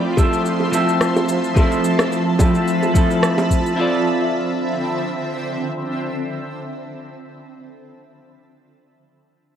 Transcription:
0.00 0.14 F3 medium
0.00 3.75 F3 medium
0.00 0.14 A3 medium
0.00 0.15 C4 medium
0.00 0.15 E4 medium
0.00 0.15 A4 loud
0.00 3.74 E5 medium
0.00 3.74 A5 medium
0.00 1.54 C6 medium
0.17 0.70 F3 medium
0.17 0.70 A3 medium
0.17 0.70 C4 medium
0.17 0.70 E4 medium
0.17 0.71 A4 medium
0.17 kick medium
0.17 high bongo medium
0.17 shaker medium
0.33 shaker soft
0.46 shaker soft
0.60 high bongo soft
0.72 1.53 F3 medium
0.72 1.53 A3 medium
0.72 1.53 C4 medium
0.72 1.54 E4 medium
0.72 1.54 A4 medium
0.72 shaker medium
0.89 shaker soft
1.01 cross-stick medium
1.01 shaker soft
1.16 high bongo medium
1.16 shaker soft
1.29 shaker medium
1.44 shaker soft
1.55 2.36 F3 medium
1.55 2.36 A3 medium
1.55 2.37 C4 medium
1.55 2.37 E4 medium
1.55 2.38 A4 medium
1.55 3.76 B5 medium
1.55 kick loud
1.55 high bongo medium
1.55 shaker soft
1.72 shaker soft
1.84 shaker medium
1.99 cross-stick medium
1.99 high bongo medium
1.99 shaker soft
2.12 shaker soft
2.39 2.92 F3 medium
2.39 2.92 A3 medium
2.39 2.92 C4 medium
2.39 2.93 E4 medium
2.39 2.93 A4 medium
2.39 kick medium
2.39 high bongo medium
2.39 shaker medium
2.55 shaker soft
2.68 shaker soft
2.83 high bongo medium
2.83 shaker soft
2.94 3.75 F3 medium
2.94 3.75 A3 medium
2.94 3.75 C4 medium
2.94 3.76 E4 medium
2.94 3.76 A4 medium
2.94 kick medium
2.94 shaker medium
3.11 shaker soft
3.23 cross-stick medium
3.23 shaker soft
3.38 high bongo medium
3.38 shaker soft
3.51 kick soft
3.51 shaker medium
3.66 shaker soft
3.76 6.77 D3 medium
3.76 7.45 C4 medium
3.76 6.77 C4 medium
3.76 3.81 E4 medium
3.76 7.47 F4 medium
3.76 6.77 E5 medium
3.80 7.47 A4 medium
3.80 7.48 D5 medium

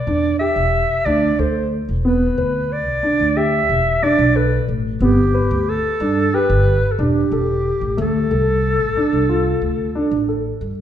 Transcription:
0.00 0.39 D5 medium
0.07 0.33 E2 medium
0.07 0.28 D4 medium
0.39 0.82 G4 medium
0.39 1.07 E5 medium
0.56 0.82 E1 medium
1.05 1.32 D2 medium
1.05 1.27 D4 medium
1.05 1.41 D5 medium
1.39 1.78 D2 medium
1.39 1.81 A4 medium
1.39 1.72 C5 medium
1.89 2.28 E1 medium
2.05 2.26 B3 medium
2.05 2.74 B4 medium
2.38 2.87 D2 medium
2.38 2.79 B4 medium
2.72 3.39 D5 medium
2.87 3.00 B1 medium
3.03 3.24 D4 medium
3.20 3.59 D2 medium
3.36 3.78 G4 medium
3.36 4.05 E5 medium
3.69 3.96 E1 medium
4.03 4.23 D4 medium
4.03 4.37 D5 medium
4.18 4.58 B1 medium
4.36 4.77 A4 medium
4.36 4.69 B4 medium
4.68 4.95 A1 medium
5.00 5.40 G1 medium
5.00 5.22 B3 medium
5.00 5.70 G4 medium
5.34 5.76 B4 medium
5.51 5.77 D2 medium
5.69 6.37 A4 medium
6.00 6.26 G2 medium
6.00 6.21 D4 medium
6.34 6.75 G4 medium
6.34 6.93 B4 medium
6.50 6.76 G1 medium
6.92 7.03 A4 medium
6.99 7.25 E1 medium
6.99 7.20 D4 medium
6.99 7.99 G4 medium
7.31 7.71 E1 medium
7.31 7.74 A4 medium
7.81 7.94 A1 medium
7.97 8.24 D2 medium
7.97 8.18 A3 medium
7.97 10.26 A4 medium
8.31 8.80 C2 medium
8.31 8.72 A4 medium
8.80 8.93 A1 medium
8.97 9.17 D4 medium
9.13 9.52 C2 medium
9.29 9.71 F4 medium
9.62 9.88 D2 medium
9.95 10.16 D4 medium
10.11 10.51 A1 medium
10.29 10.70 A4 medium
10.61 10.81 G2 medium

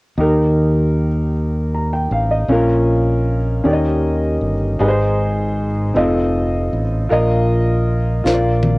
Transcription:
0.18 2.06 D#2 medium
0.18 1.31 D#3 soft
0.18 1.05 D#4 medium
0.18 1.06 G4 medium
0.18 1.07 A#4 medium
1.74 1.92 A#5 soft
1.93 2.11 G5 soft
2.11 2.46 A1 medium
2.11 2.30 F5 soft
2.31 2.67 D#5 soft
2.48 3.60 A#1 medium
2.48 3.61 A#2 soft
2.48 3.36 C#4 medium
2.48 3.37 F4 medium
2.48 3.37 A#4 medium
3.64 4.37 D#2 medium
3.64 4.76 D#3 medium
3.64 4.51 C#4 medium
3.64 4.51 D#4 medium
3.64 4.52 G4 soft
3.64 4.52 A#4 medium
3.64 3.72 D5 medium
3.73 4.56 D#5 medium
4.41 4.76 G1 medium
4.79 5.91 G#1 medium
4.79 5.91 G#2 medium
4.79 5.66 D#4 medium
4.79 5.67 G#4 medium
4.79 4.87 B4 medium
4.88 5.71 C5 medium
5.94 6.68 F1 medium
5.94 6.81 C4 medium
5.94 6.82 D#4 medium
5.94 6.82 F4 medium
5.94 6.82 A4 medium
5.94 6.82 D#5 medium
6.73 7.07 A1 medium
7.09 8.21 A#1 medium
7.09 8.21 A#2 medium
7.09 7.96 F4 medium
7.09 7.97 A#4 medium
7.09 7.98 D#5 medium
8.24 8.78 A#1 medium
8.24 8.78 A#2 medium
8.24 8.78 F4 medium
8.24 8.78 A#4 medium
8.24 8.32 C5 medium
8.24 snare soft
8.34 8.78 D5 medium
8.63 high tom medium

